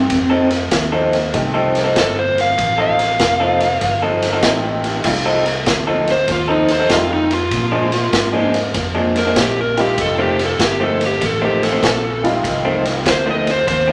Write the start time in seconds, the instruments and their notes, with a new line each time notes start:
Already playing: electric slide guitar C4
0.10 fingered electric bass F2, kick, snare, ride
0.30 clean electric guitar F3 C4 D#4 A4
0.51 muted clean electric guitar stroke, snare, ride
0.71 fingered electric bass D#2, muted clean electric guitar stroke, kick, snare, ride
0.92 clean electric guitar F3 C4 D#4 A4
1.13 snare, ride
1.33 fingered electric bass C2, honky-tonk piano A3 C4 D#4 G4, muted clean electric guitar stroke, kick, snare, ride
1.54 clean electric guitar F3 C4 D#4 A4
1.75 snare, ride
1.84 clean electric guitar F3 C4 D#4 A4
1.96 fingered electric bass G1, electric slide guitar A4, kick, snare, ride
2.15 electric slide guitar C5, muted clean electric guitar stroke
2.38 electric slide guitar F5, snare, ride
2.58 fingered electric bass A1, kick, snare, ride
2.78 clean electric guitar F3 C4 D#4 A4
2.82 electric slide guitar F5
2.99 muted clean electric guitar stroke, snare, ride
3.19 fingered electric bass F1, muted clean electric guitar stroke, kick, snare, ride
3.40 clean electric guitar F3 C4 D#4 A4
3.60 snare, ride
3.81 fingered electric bass G1, muted clean electric guitar stroke, kick, snare, ride
4.02 clean electric guitar F3 C4 D#4 A4
4.22 snare, ride
4.33 clean electric guitar F3 C4 D#4 A4
4.42 fingered electric bass A1, honky-tonk piano A3 C4 D#4 G4, kick, snare, ride
4.64 muted clean electric guitar stroke
4.84 snare, ride
5.04 fingered electric bass C2, honky-tonk piano G3 A3 C4 D#4 F4, kick, snare, crash
5.25 clean electric guitar F3 C4 D#4 A4
5.46 muted clean electric guitar stroke, snare, ride
5.66 fingered electric bass D2, muted clean electric guitar stroke, kick, snare, ride
5.87 clean electric guitar F3 C4 D#4 A4
6.08 snare, ride
6.12 electric slide guitar C5
6.28 fingered electric bass D#2, muted clean electric guitar stroke, kick, snare, ride
6.32 electric slide guitar F4
6.48 clean electric guitar F3 C4 D#4 A4, electric slide guitar D#4
6.68 electric slide guitar C5, snare, ride
6.79 clean electric guitar F3 C4 D#4 A4
6.89 fingered electric bass F2, honky-tonk piano G3 A3 C4 D#4 F4, electric slide guitar F4, kick, snare, ride
7.11 electric slide guitar D#4, muted clean electric guitar stroke
7.31 electric slide guitar F4, snare, ride
7.51 fingered electric bass A#2, kick, snare, ride
7.72 clean electric guitar A#2 F3 G#3 D4
7.92 muted clean electric guitar stroke, snare, ride
8.12 fingered electric bass G#2, muted clean electric guitar stroke, kick, snare, ride
8.33 clean electric guitar A#2 F3 G#3 D4
8.54 snare, ride
8.74 fingered electric bass F2, muted clean electric guitar stroke, kick, snare, ride
8.95 clean electric guitar A#2 F3 G#3 D4
9.16 electric slide guitar A#4, snare, ride
9.25 clean electric guitar A#2 F3 G#3 D4
9.36 fingered electric bass A#1, kick, snare, ride
9.40 electric slide guitar G4
9.57 muted clean electric guitar stroke
9.61 electric slide guitar A#4
9.77 honky-tonk piano G3 A3 C4 D#4 F4, electric slide guitar G4, snare, ride
9.97 fingered electric bass F1, electric slide guitar A4, kick, snare, ride
10.18 clean electric guitar F2 D#3 A3 C4
10.22 electric slide guitar G4
10.39 muted clean electric guitar stroke, snare, ride
10.46 electric slide guitar A4
10.59 fingered electric bass G1, muted clean electric guitar stroke, kick, snare, ride
10.64 electric slide guitar G4
10.80 clean electric guitar F2 D#3 A3 C4, electric slide guitar A4
11.01 snare, ride
11.07 electric slide guitar G4
11.21 fingered electric bass A1, muted clean electric guitar stroke, kick, snare, ride
11.26 electric slide guitar A4
11.42 clean electric guitar F2 D#3 A3 C4, electric slide guitar G4
11.63 electric slide guitar A4, snare, ride
11.72 clean electric guitar F2 D#3 A3 C4
11.82 fingered electric bass A#1, kick, snare, ride
12.03 muted clean electric guitar stroke
12.23 honky-tonk piano G3 A3 C4 D#4 F4, snare, ride
12.44 fingered electric bass C2, kick, snare, ride
12.65 clean electric guitar F2 D#3 A3 C4
12.85 muted clean electric guitar stroke, snare, ride
13.06 fingered electric bass D2, electric slide guitar C5, muted clean electric guitar stroke, kick, snare, ride
13.26 clean electric guitar F2 D#3 A3 C4
13.31 electric slide guitar D#5
13.47 snare, ride
13.51 electric slide guitar C5
13.67 fingered electric bass D#2, electric slide guitar C5, muted clean electric guitar stroke, kick, snare, ride
13.87 clean electric guitar F2 D#3 A3 C4